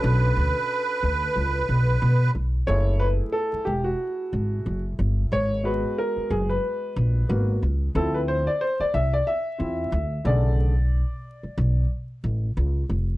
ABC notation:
X:1
M:4/4
L:1/16
Q:"Swing 16ths" 1/4=91
K:Bmix
V:1 name="Accordion"
B12- B2 z2 | z16 | z16 | z16 |
z16 |]
V:2 name="Grand piano"
[C=DFA]12- [CDFA]2 z2 | c2 B2 A2 =G F6 z3 | c2 B2 ^A2 G B6 z3 | A B =c =d c d e d e6 d2- |
=d8 z8 |]
V:3 name="Grand piano"
z16 | [A,EG]16 | z2 [G,B,F]8- [G,B,F]2 [^A,B,F]2 z2 | [=F,=CE]2 z8 [CE=F]2 z2 [^C,=D,A,]2 |
z16 |]
V:4 name="Upright bass" clef=bass
B,,,2 =D,, z3 D,,2 C,,2 B,,,2 B,,2 B,,,2 | F,,,4 z2 E,,,2 z2 G,,,2 F,,,2 =G,,,2 | G,,,4 z2 F,,,2 z2 ^A,,,2 G,,,2 C,,2 | =D,,4 z2 =C,,2 z2 E,,2 D,,2 B,,,2- |
B,,,4 z2 B,,,2 z2 A,,,2 C,,2 ^E,,,2 |]